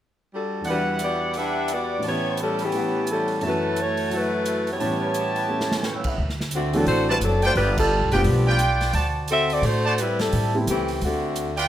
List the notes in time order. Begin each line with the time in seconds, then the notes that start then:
0.32 G3 D4 F#4 A4
0.61 E2 E3, open hi-hat
0.65 G3 D4 E4 F#4 B4 D5 F#5
0.71 F#5
0.99 G4, closed hi-hat
1.03 B3 F#4 D5
1.34 D4 B4 E5, open hi-hat
1.38 G4
1.68 closed hi-hat
1.72 B3 F#4 G4 D5
1.99 A2 E3, open hi-hat
2.03 B3 C#4 E4 G4 B4 C#5 A5
2.09 G4
2.37 C#4, closed hi-hat
2.42 G3 E4 A4
2.59 C#5 E5 B5, open hi-hat
2.63 E3 B3 C#4 G4
2.72 E3 A3 B3 F#5, open hi-hat
3.07 closed hi-hat
3.12 G3 C#4 E4 A4
3.28 open hi-hat
3.41 F#2 E3 A3 C#4 F#4 C#5 E5 A5, open hi-hat
3.46 A3 E4 F#4 B4
3.76 closed hi-hat
3.80 A3 E4 F#4 C#5
3.97 open hi-hat
4.10 F#3 E4 F#4 E5 F#5 A5, open hi-hat
4.15 A3 E4 F#4 B4
4.46 closed hi-hat
4.67 open hi-hat
4.71 B3 E4 G4 C#5
4.80 A2 E3 G3 B3 C#4 G4 B4 C#5 A5, open hi-hat
5.14 closed hi-hat
5.36 B4 G5, open hi-hat
5.49 A3 C#4 E4 A4
5.60 snare
5.71 A4 B5, snare
5.83 B4 C#6, snare
5.96 C#5 E6
6.04 E5 F#5, kick, crash
6.18 D2
6.29 snare
6.41 snare
6.51 D3 A3 C4 F#4, closed hi-hat
6.73 E3 F#3 A3 C4 D4 F#4 A4, open hi-hat
6.86 A1 A3 D4 F#4 C5, open hi-hat
7.09 G3 C4 E4 F#4 B4 C5 D5 A5
7.21 F#1 F#3 C4 D4 A4, closed hi-hat
7.42 A3 D4 F4 F#4 B4 C5 D5 G5, open hi-hat
7.55 G1 G3 D4 F4 B4, open hi-hat
7.77 G3 D4 F4 A4, kick, crash
8.01 B1
8.12 F#1 F3 G3 A3 B3 D4 F4 G4 B4 D5 G5, open hi-hat
8.24 B1, open hi-hat
8.47 F4 B4 D5 G5
8.59 closed hi-hat
8.81 snare, open hi-hat
8.93 D2 F#4 C5 D5 A5, open hi-hat
9.28 C4 F#4 A4 E5, closed hi-hat
9.50 C4 F#4 A4 D5, open hi-hat
9.62 A2 A3 D4 F#4 C5, open hi-hat
9.85 F#4 C5 D5 A5
9.98 G3 C4 E4 B4, closed hi-hat
10.19 G3 C4 E4 A4, snare, open hi-hat
10.32 A2, open hi-hat
10.55 G3 A3 B3 C4 E4
10.67 C#2 E3 A3 C4 G4, closed hi-hat
10.88 open hi-hat
11.01 D2 D3 A3 C4 F#4, open hi-hat
11.36 closed hi-hat
11.57 F4 B4 D5 G5, open hi-hat